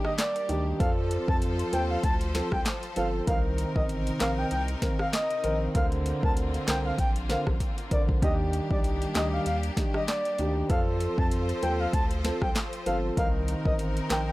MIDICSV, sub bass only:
0, 0, Header, 1, 2, 480
1, 0, Start_track
1, 0, Tempo, 618557
1, 621, Time_signature, 4, 2, 24, 8
1, 11114, End_track
2, 0, Start_track
2, 0, Title_t, "Sub bass"
2, 0, Program_c, 0, 38
2, 381, Note_on_c, 0, 38, 96
2, 571, Note_off_c, 0, 38, 0
2, 621, Note_on_c, 0, 41, 112
2, 918, Note_off_c, 0, 41, 0
2, 995, Note_on_c, 0, 41, 98
2, 1269, Note_off_c, 0, 41, 0
2, 1340, Note_on_c, 0, 39, 88
2, 1531, Note_off_c, 0, 39, 0
2, 1579, Note_on_c, 0, 38, 97
2, 1877, Note_off_c, 0, 38, 0
2, 1955, Note_on_c, 0, 36, 85
2, 2039, Note_off_c, 0, 36, 0
2, 2301, Note_on_c, 0, 31, 99
2, 2491, Note_off_c, 0, 31, 0
2, 2541, Note_on_c, 0, 36, 116
2, 2837, Note_off_c, 0, 36, 0
2, 2916, Note_on_c, 0, 33, 95
2, 3189, Note_off_c, 0, 33, 0
2, 3263, Note_on_c, 0, 34, 94
2, 3452, Note_off_c, 0, 34, 0
2, 3502, Note_on_c, 0, 36, 104
2, 3692, Note_off_c, 0, 36, 0
2, 4221, Note_on_c, 0, 34, 99
2, 4411, Note_off_c, 0, 34, 0
2, 4461, Note_on_c, 0, 38, 108
2, 4758, Note_off_c, 0, 38, 0
2, 4835, Note_on_c, 0, 38, 88
2, 5109, Note_off_c, 0, 38, 0
2, 5181, Note_on_c, 0, 36, 88
2, 5371, Note_off_c, 0, 36, 0
2, 5420, Note_on_c, 0, 34, 99
2, 5717, Note_off_c, 0, 34, 0
2, 5795, Note_on_c, 0, 33, 100
2, 5879, Note_off_c, 0, 33, 0
2, 6141, Note_on_c, 0, 34, 92
2, 6331, Note_off_c, 0, 34, 0
2, 6382, Note_on_c, 0, 39, 113
2, 6678, Note_off_c, 0, 39, 0
2, 6756, Note_on_c, 0, 36, 90
2, 7030, Note_off_c, 0, 36, 0
2, 7101, Note_on_c, 0, 38, 92
2, 7291, Note_off_c, 0, 38, 0
2, 7341, Note_on_c, 0, 39, 105
2, 7531, Note_off_c, 0, 39, 0
2, 8061, Note_on_c, 0, 38, 102
2, 8251, Note_off_c, 0, 38, 0
2, 8301, Note_on_c, 0, 41, 106
2, 8598, Note_off_c, 0, 41, 0
2, 8675, Note_on_c, 0, 41, 102
2, 8949, Note_off_c, 0, 41, 0
2, 9022, Note_on_c, 0, 39, 87
2, 9212, Note_off_c, 0, 39, 0
2, 9260, Note_on_c, 0, 38, 101
2, 9557, Note_off_c, 0, 38, 0
2, 9635, Note_on_c, 0, 36, 79
2, 9719, Note_off_c, 0, 36, 0
2, 9981, Note_on_c, 0, 31, 94
2, 10171, Note_off_c, 0, 31, 0
2, 10222, Note_on_c, 0, 36, 115
2, 10518, Note_off_c, 0, 36, 0
2, 10595, Note_on_c, 0, 33, 95
2, 10869, Note_off_c, 0, 33, 0
2, 10942, Note_on_c, 0, 34, 94
2, 11114, Note_off_c, 0, 34, 0
2, 11114, End_track
0, 0, End_of_file